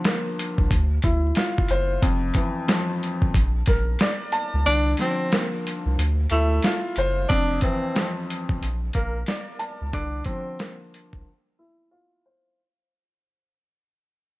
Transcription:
Already playing: upright piano D3 F3
0.04 upright piano A#3, snare, closed hi-hat
0.39 closed hi-hat
0.58 sub bass C2, kick
0.71 sub bass D2, kick, closed hi-hat
1.02 sub bass D2, upright piano E4, kick, closed hi-hat
1.35 upright piano F4, snare, closed hi-hat
1.58 kick
1.68 sub bass F#1, upright piano C5, closed hi-hat
2.02 sub bass F1, upright piano F2, kick, closed hi-hat
2.34 upright piano E3, kick, closed hi-hat
2.68 upright piano F3, snare, closed hi-hat
3.03 closed hi-hat
3.22 sub bass G1, kick
3.34 sub bass A#1, kick, closed hi-hat
3.66 sub bass A#1, upright piano A#4, kick, snare, closed hi-hat
3.99 upright piano D5, snare, closed hi-hat
4.32 upright piano A5, closed hi-hat
4.54 sub bass C#2
4.66 sub bass C2, upright piano D3, tenor saxophone D4, closed hi-hat
4.97 upright piano F3, tenor saxophone C4, snare, closed hi-hat
5.32 upright piano A#3, snare, closed hi-hat
5.67 closed hi-hat
5.86 sub bass C2
5.98 sub bass D2, closed hi-hat
6.30 sub bass D2, tenor saxophone A3, upright piano E4, closed hi-hat
6.62 upright piano F4, snare, closed hi-hat
6.96 sub bass F#1, upright piano C5, closed hi-hat
7.29 sub bass F1, upright piano F2, tenor saxophone D4, kick, closed hi-hat
7.61 upright piano E3, tenor saxophone C4, kick, closed hi-hat
7.95 upright piano F3, snare, closed hi-hat
8.30 closed hi-hat
8.49 sub bass G1, kick
8.62 sub bass A#1, closed hi-hat
8.93 sub bass A#1, tenor saxophone A#3, upright piano A#4, kick, closed hi-hat
9.26 upright piano D5, snare, closed hi-hat
9.59 upright piano A5, closed hi-hat
9.81 sub bass C#2
9.93 sub bass C2, upright piano D3, tenor saxophone D4, kick, closed hi-hat
10.25 upright piano F3, tenor saxophone C4, kick, closed hi-hat
10.59 upright piano A#3, snare, closed hi-hat
10.94 closed hi-hat
11.13 sub bass C2, kick
11.59 upright piano E4
11.91 upright piano F4
12.26 upright piano C5

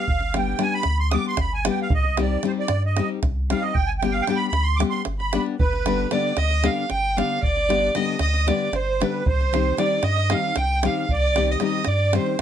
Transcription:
Already playing: accordion F5
0.08 sub bass G1, davul low
0.20 davul high
0.34 nylon-string guitar G3 B3 D4 G4, accordion G5, davul high
0.59 nylon-string guitar G3 B3 D4 G4, accordion G#5, davul high
0.74 accordion B5
0.83 sub bass D2, davul high
1.00 accordion C6
1.11 nylon-string guitar G3 B3 D4 G4, accordion D6 D#6, davul high
1.28 accordion C6
1.37 sub bass G1, accordion B5, davul high, davul low
1.54 accordion G#5
1.65 nylon-string guitar G3 B3 D4 G4, davul high
1.69 accordion G5
1.82 accordion F5
1.90 sub bass C2, accordion D#5, davul low
2.04 davul high
2.17 nylon-string guitar G3 C4 D#4 G4, accordion D5, davul high
2.43 nylon-string guitar G3 C4 D#4 G4, davul high
2.47 accordion C5
2.59 accordion D5
2.68 sub bass G2, davul high
2.86 accordion D#5
2.97 nylon-string guitar G3 C4 D#4 G4, davul high
3.23 sub bass C2, davul high, davul low
3.50 nylon-string guitar G3 C4 D#4 G4, accordion F5, davul high
3.61 accordion D#5
3.74 sub bass G1, accordion G5, davul low
3.86 accordion G#5
3.99 nylon-string guitar G3, accordion G5, davul high
4.03 nylon-string guitar B3 D4 G4
4.12 accordion F5, davul high
4.22 accordion G5
4.27 nylon-string guitar G3 B3 D4 G4, davul high
4.36 accordion B5
4.48 sub bass D2, accordion B5
4.53 davul high
4.63 accordion C6
4.76 nylon-string guitar G3 B3, accordion D6
4.80 nylon-string guitar D4 G4, davul high
4.90 accordion C6, davul high
5.05 sub bass G1, davul high
5.19 accordion B5, davul high
5.33 nylon-string guitar G3 B3 D4 G4, davul high
5.46 davul high
5.59 sub bass G1, accordion B4, fiddle B4, davul low
5.73 davul high
5.86 nylon-string guitar D3 G3 B3 D4 G4, davul high
6.11 nylon-string guitar D3 G3 B3 D4 G4, fiddle D5, accordion D5, davul high
6.37 sub bass D2, fiddle D#5, accordion D#5, davul high
6.51 davul high
6.62 nylon-string guitar D3 G3 B3 D4 G4, accordion F5, fiddle F5, davul high
6.89 sub bass G1, fiddle G5, accordion G5, davul high
7.17 nylon-string guitar D3 G3 B3 D4 G4, fiddle F5, accordion F5, davul high
7.43 sub bass G1, fiddle D5, accordion D5, davul low
7.57 davul high
7.69 nylon-string guitar D3 G3 B3 D4 G4, davul high
7.95 nylon-string guitar D3 G3 B3 D4 G4, fiddle D#5, accordion D#5, davul high
8.19 sub bass D2, fiddle D#5, accordion D#5, davul high
8.34 davul high
8.46 nylon-string guitar D3 G3 B3 D4 G4, fiddle D5, accordion D5, davul high
8.72 sub bass G1, accordion C5, fiddle C5, davul high
9.00 nylon-string guitar D3 G3 B3 D4 G4, fiddle B4, accordion B4, davul high
9.26 sub bass C2, fiddle C5, accordion C5, davul low
9.41 davul high
9.53 nylon-string guitar D#3 G3 C4 D#4 G4, davul high
9.77 nylon-string guitar D#3 G3 C4 D#4 G4, accordion D5, fiddle D5, davul high
10.03 sub bass G2, accordion D#5, fiddle D#5, davul high
10.16 davul high
10.30 nylon-string guitar D#3 G3 C4 D#4 G4, fiddle F5, accordion F5, davul high
10.56 sub bass C2, fiddle G5, accordion G5, davul high
10.83 nylon-string guitar D#3 G3 C4 D#4 G4, accordion F5, fiddle F5, davul high
11.09 sub bass C2, fiddle D5, accordion D5, davul low
11.36 nylon-string guitar D#3 G3 C4 D#4 G4, davul high
11.48 accordion D#5, davul high
11.52 fiddle D#5
11.60 nylon-string guitar D#3 G3 C4 D#4 G4, fiddle D#5, accordion D#5, davul high
11.85 sub bass G2, accordion D5, fiddle D5, davul high
12.13 nylon-string guitar D#3 G3 C4 D#4 G4, fiddle C5, accordion C5, davul high
12.26 davul high

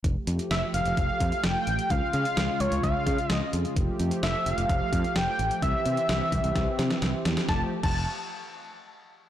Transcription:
0.04 fretless electric bass F1, analog synth pad A3, kick, closed hi-hat
0.27 fretless electric bass F2, closed hi-hat
0.39 closed hi-hat
0.51 fretless electric bass F1, analog synth lead E5, snare, closed hi-hat
0.74 fretless electric bass F1, analog synth lead F5, closed hi-hat
0.86 fretless electric bass F1, closed hi-hat
0.97 fretless electric bass F1, kick, closed hi-hat
1.20 fretless electric bass F2, kick, closed hi-hat
1.32 closed hi-hat
1.44 fretless electric bass F1, analog synth lead G5, snare, closed hi-hat
1.67 fretless electric bass A1, closed hi-hat
1.79 closed hi-hat
1.90 fretless electric bass C#2, analog synth pad C#3 F4, analog synth lead F5, kick, closed hi-hat
2.13 fretless electric bass C#3, analog synth lead F5, closed hi-hat
2.25 closed hi-hat
2.37 fretless electric bass C#2, snare, closed hi-hat
2.60 fretless electric bass C#2, analog synth lead C#5, closed hi-hat
2.72 fretless electric bass C#2, closed hi-hat
2.83 fretless electric bass C#2, analog synth lead F5, kick, closed hi-hat
3.07 fretless electric bass C#3, kick, closed hi-hat
3.18 closed hi-hat
3.30 fretless electric bass C#2, analog synth lead D#5, snare, closed hi-hat
3.53 fretless electric bass F2, closed hi-hat
3.65 closed hi-hat
3.76 fretless electric bass F1, analog synth pad F3 A3 G4, kick, closed hi-hat
3.99 fretless electric bass F2, closed hi-hat
4.11 closed hi-hat
4.23 fretless electric bass F1, analog synth lead E5, snare, closed hi-hat
4.46 fretless electric bass F1, analog synth lead F5, closed hi-hat
4.58 fretless electric bass F1, closed hi-hat
4.69 fretless electric bass F1, kick, closed hi-hat
4.93 fretless electric bass F2, kick, closed hi-hat
5.04 closed hi-hat
5.16 fretless electric bass F1, analog synth lead G5, snare, closed hi-hat
5.39 fretless electric bass A1, closed hi-hat
5.51 closed hi-hat
5.62 fretless electric bass C2, analog synth pad E3 C4, analog synth lead E5, kick, closed hi-hat
5.86 fretless electric bass C3, closed hi-hat
5.97 closed hi-hat
6.09 fretless electric bass C2, snare, closed hi-hat
6.32 fretless electric bass C2, kick, closed hi-hat
6.44 fretless electric bass C2, closed hi-hat
6.56 fretless electric bass C2, kick, snare, closed hi-hat
6.79 fretless electric bass C3, snare, closed hi-hat
6.91 snare, closed hi-hat
7.02 fretless electric bass C2, snare, closed hi-hat
7.25 fretless electric bass E2, snare, closed hi-hat
7.37 snare, closed hi-hat
7.49 fretless electric bass F1, analog synth pad F3 A3 G4, analog synth lead A5, kick, snare
7.83 fretless electric bass F1, analog synth lead A5, kick, crash

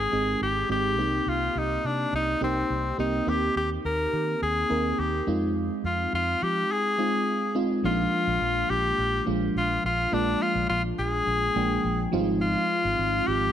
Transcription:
Already playing: fm electric piano G#3 C4 D#4 G4, tenor saxophone G#4
0.12 fingered electric bass G#1, fm electric piano G#3 C4 D#4 G#4
0.41 fingered electric bass G#1, tenor saxophone G4
0.69 fingered electric bass G#1, fm electric piano G#3 C4 D#4 G4, tenor saxophone G4
0.98 fingered electric bass C2, fm electric piano A#3 C4 D#4 G4
1.26 fingered electric bass C2, tenor saxophone F4
1.55 fingered electric bass C2, tenor saxophone D#4
1.84 fingered electric bass C3, tenor saxophone D4
2.12 fingered electric bass C2, tenor saxophone D#4
2.40 fingered electric bass C2, fm electric piano A#3 C4 D#4 G4, tenor saxophone C4
2.70 fingered electric bass C2
2.98 fingered electric bass C2, fm electric piano A#3 C4 D#4 G4, tenor saxophone D#4
3.27 fingered electric bass D#2, fm electric piano A#3 C4 D#4 G4, tenor saxophone G4
3.56 fingered electric bass D#2, tenor saxophone G4
3.84 fingered electric bass D#2, tenor saxophone A#4
4.13 fingered electric bass D#3
4.42 fingered electric bass D#2, tenor saxophone G#4
4.69 fingered electric bass D#2, fm electric piano A#3 C4 D#4 A#4
4.98 fingered electric bass D#2, tenor saxophone G4
5.27 fingered electric bass F2, fm electric piano G#3 C4 D#4 F4
5.84 fingered electric bass F2, tenor saxophone F4
6.13 fingered electric bass F2, tenor saxophone F4
6.42 fingered electric bass F3, tenor saxophone G4
6.72 tenor saxophone G#4
6.98 fm electric piano G#3 C4 D#4 F4
7.55 fm electric piano G#3 C4 D#4 F4
7.84 fingered electric bass A#1, fm electric piano F3 G#3 A#3 D4 D#4, tenor saxophone F4
7.91 fm electric piano F4
8.27 fingered electric bass A#1
8.41 fingered electric bass A#1
8.70 fingered electric bass A#1, tenor saxophone G4
8.98 fingered electric bass A#1
9.26 fingered electric bass A#1, fm electric piano F3 G#3 A#3 D4 F4
9.55 fingered electric bass A#1, tenor saxophone F4
9.84 fingered electric bass A#1, tenor saxophone F4
10.12 fingered electric bass A#1, fm electric piano F3 G#3 A#3 D4 F4, tenor saxophone D4
10.42 tenor saxophone F4
10.55 fingered electric bass A#1
10.69 fingered electric bass A#1, tenor saxophone F4
10.98 fingered electric bass A#1, tenor saxophone G#4
11.27 fingered electric bass A#1
11.55 fingered electric bass A#1, fm electric piano F3 G#3 A#3 D4 G5
11.84 fingered electric bass A#1
12.12 fingered electric bass G#1, fm electric piano F3 G3 C4 D#4 F4
12.19 fm electric piano G#3
12.41 tenor saxophone F4
12.84 fingered electric bass G#1
12.99 fingered electric bass G#1
13.27 fingered electric bass G#1, tenor saxophone G4

